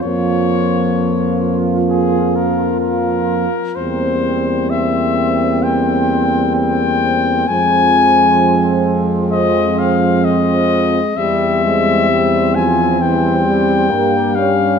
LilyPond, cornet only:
\new Staff \with { instrumentName = "Cornet" } { \time 4/4 \key f \minor \tempo 4 = 65 des''4. r8 aes'8 bes'8 bes'4 | c''4 e''4 g''4 g''4 | aes''4. r8 ees''8 f''8 ees''4 | e''4. aes''8 g''4. f''8 | }